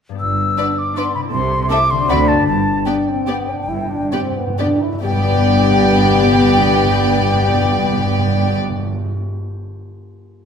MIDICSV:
0, 0, Header, 1, 10, 480
1, 0, Start_track
1, 0, Key_signature, 1, "major"
1, 0, Tempo, 376884
1, 261, Time_signature, 3, 2, 24, 8
1, 3155, Tempo, 406780
1, 4595, Tempo, 447761
1, 6515, Tempo, 460829
1, 8915, Tempo, 426136
1, 11909, End_track
2, 0, Start_track
2, 0, Title_t, "Flute"
2, 0, Program_c, 0, 73
2, 254, Note_on_c, 0, 88, 57
2, 999, Note_on_c, 0, 86, 55
2, 1018, Note_off_c, 0, 88, 0
2, 1236, Note_on_c, 0, 84, 66
2, 1255, Note_off_c, 0, 86, 0
2, 1456, Note_off_c, 0, 84, 0
2, 1464, Note_on_c, 0, 83, 67
2, 1540, Note_off_c, 0, 83, 0
2, 1692, Note_on_c, 0, 84, 68
2, 2161, Note_off_c, 0, 84, 0
2, 2167, Note_on_c, 0, 86, 87
2, 2426, Note_on_c, 0, 84, 77
2, 2445, Note_off_c, 0, 86, 0
2, 2666, Note_on_c, 0, 83, 86
2, 2685, Note_off_c, 0, 84, 0
2, 2906, Note_on_c, 0, 81, 72
2, 2925, Note_off_c, 0, 83, 0
2, 3149, Note_off_c, 0, 81, 0
2, 3156, Note_on_c, 0, 81, 66
2, 3606, Note_on_c, 0, 79, 51
2, 3623, Note_off_c, 0, 81, 0
2, 5785, Note_off_c, 0, 79, 0
2, 6033, Note_on_c, 0, 79, 73
2, 9775, Note_off_c, 0, 79, 0
2, 11909, End_track
3, 0, Start_track
3, 0, Title_t, "Violin section"
3, 0, Program_c, 1, 48
3, 744, Note_on_c, 1, 74, 35
3, 846, Note_off_c, 1, 74, 0
3, 1231, Note_on_c, 1, 74, 41
3, 1333, Note_off_c, 1, 74, 0
3, 2178, Note_on_c, 1, 76, 51
3, 2280, Note_off_c, 1, 76, 0
3, 2674, Note_on_c, 1, 74, 48
3, 2776, Note_off_c, 1, 74, 0
3, 3614, Note_on_c, 1, 74, 32
3, 3708, Note_off_c, 1, 74, 0
3, 4098, Note_on_c, 1, 74, 35
3, 4193, Note_off_c, 1, 74, 0
3, 5051, Note_on_c, 1, 74, 38
3, 5137, Note_off_c, 1, 74, 0
3, 5552, Note_on_c, 1, 74, 37
3, 5638, Note_off_c, 1, 74, 0
3, 6043, Note_on_c, 1, 74, 69
3, 9780, Note_off_c, 1, 74, 0
3, 11909, End_track
4, 0, Start_track
4, 0, Title_t, "Violin section"
4, 0, Program_c, 2, 48
4, 738, Note_on_c, 2, 71, 35
4, 840, Note_off_c, 2, 71, 0
4, 1244, Note_on_c, 2, 71, 36
4, 1346, Note_off_c, 2, 71, 0
4, 2171, Note_on_c, 2, 69, 47
4, 2272, Note_off_c, 2, 69, 0
4, 2667, Note_on_c, 2, 66, 49
4, 2769, Note_off_c, 2, 66, 0
4, 3603, Note_on_c, 2, 67, 33
4, 3698, Note_off_c, 2, 67, 0
4, 4095, Note_on_c, 2, 67, 32
4, 4190, Note_off_c, 2, 67, 0
4, 5054, Note_on_c, 2, 67, 37
4, 5140, Note_off_c, 2, 67, 0
4, 5544, Note_on_c, 2, 67, 36
4, 5630, Note_off_c, 2, 67, 0
4, 6019, Note_on_c, 2, 67, 63
4, 9767, Note_off_c, 2, 67, 0
4, 11909, End_track
5, 0, Start_track
5, 0, Title_t, "French horn section"
5, 0, Program_c, 3, 60
5, 735, Note_on_c, 3, 59, 33
5, 740, Note_on_c, 3, 62, 32
5, 916, Note_off_c, 3, 59, 0
5, 920, Note_off_c, 3, 62, 0
5, 1244, Note_on_c, 3, 62, 40
5, 1255, Note_on_c, 3, 59, 42
5, 1411, Note_off_c, 3, 62, 0
5, 1420, Note_off_c, 3, 59, 0
5, 2175, Note_on_c, 3, 64, 50
5, 2178, Note_on_c, 3, 57, 46
5, 2354, Note_off_c, 3, 64, 0
5, 2357, Note_off_c, 3, 57, 0
5, 2680, Note_on_c, 3, 60, 52
5, 2682, Note_on_c, 3, 66, 51
5, 2852, Note_off_c, 3, 60, 0
5, 2854, Note_off_c, 3, 66, 0
5, 3602, Note_on_c, 3, 62, 44
5, 3839, Note_off_c, 3, 62, 0
5, 3872, Note_on_c, 3, 60, 43
5, 4115, Note_on_c, 3, 59, 47
5, 4116, Note_off_c, 3, 60, 0
5, 4358, Note_off_c, 3, 59, 0
5, 4358, Note_on_c, 3, 62, 45
5, 4571, Note_on_c, 3, 64, 53
5, 4595, Note_off_c, 3, 62, 0
5, 4795, Note_on_c, 3, 62, 53
5, 4804, Note_off_c, 3, 64, 0
5, 5037, Note_off_c, 3, 62, 0
5, 5038, Note_on_c, 3, 60, 48
5, 5291, Note_off_c, 3, 60, 0
5, 5291, Note_on_c, 3, 59, 47
5, 5541, Note_off_c, 3, 59, 0
5, 5551, Note_on_c, 3, 62, 57
5, 5783, Note_on_c, 3, 64, 51
5, 5793, Note_off_c, 3, 62, 0
5, 6019, Note_on_c, 3, 59, 63
5, 6020, Note_on_c, 3, 67, 69
5, 6024, Note_off_c, 3, 64, 0
5, 9767, Note_off_c, 3, 59, 0
5, 9768, Note_off_c, 3, 67, 0
5, 11909, End_track
6, 0, Start_track
6, 0, Title_t, "Harp"
6, 0, Program_c, 4, 46
6, 116, Note_on_c, 4, 43, 35
6, 146, Note_on_c, 4, 59, 27
6, 177, Note_on_c, 4, 62, 28
6, 193, Note_on_c, 4, 67, 28
6, 1463, Note_on_c, 4, 48, 45
6, 1526, Note_on_c, 4, 60, 38
6, 1581, Note_on_c, 4, 64, 37
6, 1638, Note_on_c, 4, 69, 41
6, 1666, Note_off_c, 4, 62, 0
6, 1686, Note_off_c, 4, 67, 0
6, 1696, Note_off_c, 4, 59, 0
6, 1724, Note_off_c, 4, 43, 0
6, 2436, Note_on_c, 4, 50, 53
6, 2474, Note_off_c, 4, 60, 0
6, 2489, Note_on_c, 4, 60, 42
6, 2550, Note_on_c, 4, 62, 47
6, 2574, Note_off_c, 4, 48, 0
6, 2603, Note_on_c, 4, 66, 46
6, 2633, Note_off_c, 4, 64, 0
6, 2918, Note_on_c, 4, 43, 37
6, 2970, Note_on_c, 4, 59, 30
6, 3017, Note_off_c, 4, 62, 0
6, 3032, Note_on_c, 4, 62, 33
6, 3055, Note_off_c, 4, 50, 0
6, 3081, Note_off_c, 4, 60, 0
6, 3089, Note_on_c, 4, 67, 32
6, 3138, Note_off_c, 4, 66, 0
6, 3141, Note_off_c, 4, 69, 0
6, 5946, Note_off_c, 4, 43, 0
6, 6027, Note_on_c, 4, 43, 49
6, 6102, Note_on_c, 4, 55, 48
6, 6165, Note_off_c, 4, 59, 0
6, 6177, Note_on_c, 4, 59, 54
6, 6235, Note_off_c, 4, 62, 0
6, 6248, Note_on_c, 4, 62, 47
6, 6312, Note_off_c, 4, 67, 0
6, 6325, Note_on_c, 4, 67, 47
6, 6403, Note_on_c, 4, 74, 50
6, 10376, Note_off_c, 4, 43, 0
6, 10455, Note_off_c, 4, 55, 0
6, 10534, Note_off_c, 4, 59, 0
6, 10608, Note_off_c, 4, 62, 0
6, 10689, Note_off_c, 4, 67, 0
6, 10757, Note_off_c, 4, 74, 0
6, 11909, End_track
7, 0, Start_track
7, 0, Title_t, "Viola section"
7, 0, Program_c, 5, 48
7, 730, Note_on_c, 5, 62, 35
7, 832, Note_off_c, 5, 62, 0
7, 1224, Note_on_c, 5, 62, 37
7, 1326, Note_off_c, 5, 62, 0
7, 2161, Note_on_c, 5, 60, 50
7, 2263, Note_off_c, 5, 60, 0
7, 2657, Note_on_c, 5, 60, 48
7, 2759, Note_off_c, 5, 60, 0
7, 3601, Note_on_c, 5, 59, 36
7, 3696, Note_off_c, 5, 59, 0
7, 4101, Note_on_c, 5, 59, 35
7, 4195, Note_off_c, 5, 59, 0
7, 5049, Note_on_c, 5, 59, 39
7, 5135, Note_off_c, 5, 59, 0
7, 5550, Note_on_c, 5, 59, 37
7, 5636, Note_off_c, 5, 59, 0
7, 6028, Note_on_c, 5, 59, 55
7, 9772, Note_off_c, 5, 59, 0
7, 11909, End_track
8, 0, Start_track
8, 0, Title_t, "Cello section"
8, 0, Program_c, 6, 48
8, 259, Note_on_c, 6, 43, 38
8, 658, Note_off_c, 6, 43, 0
8, 1697, Note_on_c, 6, 48, 55
8, 2091, Note_off_c, 6, 48, 0
8, 2666, Note_on_c, 6, 50, 61
8, 3072, Note_off_c, 6, 50, 0
8, 3149, Note_on_c, 6, 43, 47
8, 3534, Note_off_c, 6, 43, 0
8, 4581, Note_on_c, 6, 43, 42
8, 4965, Note_off_c, 6, 43, 0
8, 6020, Note_on_c, 6, 43, 59
8, 9767, Note_off_c, 6, 43, 0
8, 11909, End_track
9, 0, Start_track
9, 0, Title_t, "Timpani"
9, 0, Program_c, 7, 47
9, 3737, Note_on_c, 7, 43, 31
9, 3817, Note_off_c, 7, 43, 0
9, 3835, Note_on_c, 7, 43, 32
9, 3912, Note_off_c, 7, 43, 0
9, 3926, Note_on_c, 7, 43, 33
9, 4005, Note_off_c, 7, 43, 0
9, 4124, Note_on_c, 7, 43, 41
9, 4202, Note_off_c, 7, 43, 0
9, 4216, Note_on_c, 7, 43, 39
9, 4297, Note_off_c, 7, 43, 0
9, 4311, Note_on_c, 7, 43, 39
9, 4387, Note_off_c, 7, 43, 0
9, 4402, Note_on_c, 7, 43, 43
9, 4480, Note_off_c, 7, 43, 0
9, 4494, Note_on_c, 7, 43, 43
9, 4572, Note_off_c, 7, 43, 0
9, 4586, Note_on_c, 7, 43, 46
9, 4659, Note_off_c, 7, 43, 0
9, 4755, Note_on_c, 7, 43, 57
9, 4834, Note_off_c, 7, 43, 0
9, 4847, Note_on_c, 7, 43, 56
9, 4930, Note_off_c, 7, 43, 0
9, 4943, Note_on_c, 7, 43, 58
9, 5033, Note_off_c, 7, 43, 0
9, 5045, Note_on_c, 7, 43, 61
9, 5127, Note_off_c, 7, 43, 0
9, 5140, Note_on_c, 7, 43, 61
9, 5225, Note_off_c, 7, 43, 0
9, 5238, Note_on_c, 7, 43, 62
9, 5321, Note_off_c, 7, 43, 0
9, 5334, Note_on_c, 7, 43, 65
9, 5411, Note_off_c, 7, 43, 0
9, 5424, Note_on_c, 7, 43, 77
9, 5508, Note_off_c, 7, 43, 0
9, 5521, Note_on_c, 7, 43, 80
9, 5610, Note_off_c, 7, 43, 0
9, 5623, Note_on_c, 7, 43, 79
9, 5712, Note_off_c, 7, 43, 0
9, 5725, Note_on_c, 7, 43, 74
9, 5808, Note_off_c, 7, 43, 0
9, 5821, Note_on_c, 7, 43, 84
9, 5897, Note_off_c, 7, 43, 0
9, 5909, Note_on_c, 7, 43, 91
9, 5999, Note_off_c, 7, 43, 0
9, 6024, Note_on_c, 7, 43, 73
9, 6101, Note_off_c, 7, 43, 0
9, 6105, Note_on_c, 7, 43, 70
9, 6182, Note_off_c, 7, 43, 0
9, 6183, Note_on_c, 7, 43, 77
9, 6260, Note_off_c, 7, 43, 0
9, 6263, Note_on_c, 7, 43, 68
9, 6337, Note_off_c, 7, 43, 0
9, 6337, Note_on_c, 7, 43, 70
9, 6412, Note_off_c, 7, 43, 0
9, 6412, Note_on_c, 7, 43, 69
9, 6489, Note_off_c, 7, 43, 0
9, 6489, Note_on_c, 7, 43, 80
9, 6565, Note_off_c, 7, 43, 0
9, 6576, Note_on_c, 7, 43, 68
9, 6650, Note_off_c, 7, 43, 0
9, 6650, Note_on_c, 7, 43, 72
9, 6723, Note_off_c, 7, 43, 0
9, 6723, Note_on_c, 7, 43, 64
9, 6798, Note_off_c, 7, 43, 0
9, 6870, Note_on_c, 7, 43, 76
9, 6943, Note_off_c, 7, 43, 0
9, 6943, Note_on_c, 7, 43, 79
9, 7018, Note_off_c, 7, 43, 0
9, 7018, Note_on_c, 7, 43, 73
9, 7093, Note_off_c, 7, 43, 0
9, 7095, Note_on_c, 7, 43, 78
9, 7170, Note_off_c, 7, 43, 0
9, 7170, Note_on_c, 7, 43, 70
9, 7242, Note_off_c, 7, 43, 0
9, 7242, Note_on_c, 7, 43, 84
9, 7314, Note_off_c, 7, 43, 0
9, 7314, Note_on_c, 7, 43, 71
9, 7385, Note_off_c, 7, 43, 0
9, 7385, Note_on_c, 7, 43, 73
9, 7460, Note_off_c, 7, 43, 0
9, 7466, Note_on_c, 7, 43, 66
9, 7541, Note_off_c, 7, 43, 0
9, 7550, Note_on_c, 7, 43, 78
9, 7622, Note_off_c, 7, 43, 0
9, 7622, Note_on_c, 7, 43, 70
9, 7693, Note_off_c, 7, 43, 0
9, 7693, Note_on_c, 7, 43, 75
9, 7766, Note_off_c, 7, 43, 0
9, 7766, Note_on_c, 7, 43, 74
9, 7841, Note_off_c, 7, 43, 0
9, 7843, Note_on_c, 7, 43, 71
9, 7918, Note_off_c, 7, 43, 0
9, 7918, Note_on_c, 7, 43, 74
9, 7992, Note_off_c, 7, 43, 0
9, 7993, Note_on_c, 7, 43, 73
9, 8068, Note_off_c, 7, 43, 0
9, 8070, Note_on_c, 7, 43, 66
9, 8143, Note_off_c, 7, 43, 0
9, 8143, Note_on_c, 7, 43, 75
9, 8218, Note_off_c, 7, 43, 0
9, 8222, Note_on_c, 7, 43, 67
9, 8297, Note_off_c, 7, 43, 0
9, 8297, Note_on_c, 7, 43, 73
9, 8364, Note_off_c, 7, 43, 0
9, 8364, Note_on_c, 7, 43, 69
9, 8437, Note_off_c, 7, 43, 0
9, 8437, Note_on_c, 7, 43, 83
9, 8512, Note_off_c, 7, 43, 0
9, 8512, Note_on_c, 7, 43, 73
9, 8587, Note_off_c, 7, 43, 0
9, 8587, Note_on_c, 7, 43, 75
9, 8659, Note_off_c, 7, 43, 0
9, 8659, Note_on_c, 7, 43, 67
9, 8734, Note_off_c, 7, 43, 0
9, 8735, Note_on_c, 7, 43, 76
9, 8810, Note_off_c, 7, 43, 0
9, 8812, Note_on_c, 7, 43, 70
9, 8887, Note_off_c, 7, 43, 0
9, 8887, Note_on_c, 7, 43, 74
9, 8962, Note_off_c, 7, 43, 0
9, 8962, Note_on_c, 7, 43, 64
9, 9040, Note_off_c, 7, 43, 0
9, 9040, Note_on_c, 7, 43, 78
9, 9119, Note_off_c, 7, 43, 0
9, 9119, Note_on_c, 7, 43, 69
9, 9200, Note_off_c, 7, 43, 0
9, 9200, Note_on_c, 7, 43, 72
9, 9281, Note_off_c, 7, 43, 0
9, 9283, Note_on_c, 7, 43, 69
9, 9362, Note_off_c, 7, 43, 0
9, 9362, Note_on_c, 7, 43, 72
9, 9438, Note_off_c, 7, 43, 0
9, 9438, Note_on_c, 7, 43, 70
9, 9516, Note_off_c, 7, 43, 0
9, 9516, Note_on_c, 7, 43, 80
9, 9597, Note_off_c, 7, 43, 0
9, 9600, Note_on_c, 7, 43, 64
9, 9681, Note_off_c, 7, 43, 0
9, 9686, Note_on_c, 7, 43, 80
9, 9767, Note_off_c, 7, 43, 0
9, 9767, Note_on_c, 7, 43, 70
9, 9848, Note_off_c, 7, 43, 0
9, 9848, Note_on_c, 7, 43, 70
9, 9928, Note_off_c, 7, 43, 0
9, 9928, Note_on_c, 7, 43, 69
9, 10009, Note_off_c, 7, 43, 0
9, 10010, Note_on_c, 7, 43, 78
9, 10087, Note_off_c, 7, 43, 0
9, 10087, Note_on_c, 7, 43, 68
9, 10168, Note_off_c, 7, 43, 0
9, 10168, Note_on_c, 7, 43, 70
9, 10249, Note_off_c, 7, 43, 0
9, 10256, Note_on_c, 7, 43, 70
9, 10337, Note_off_c, 7, 43, 0
9, 10340, Note_on_c, 7, 43, 76
9, 10421, Note_off_c, 7, 43, 0
9, 11909, End_track
10, 0, Start_track
10, 0, Title_t, "Double bass section"
10, 0, Program_c, 8, 48
10, 258, Note_on_c, 8, 31, 40
10, 657, Note_off_c, 8, 31, 0
10, 1696, Note_on_c, 8, 36, 58
10, 2090, Note_off_c, 8, 36, 0
10, 2666, Note_on_c, 8, 38, 63
10, 3072, Note_off_c, 8, 38, 0
10, 3151, Note_on_c, 8, 31, 46
10, 3534, Note_off_c, 8, 31, 0
10, 4582, Note_on_c, 8, 31, 47
10, 4966, Note_off_c, 8, 31, 0
10, 6023, Note_on_c, 8, 31, 62
10, 9769, Note_off_c, 8, 31, 0
10, 11909, End_track
0, 0, End_of_file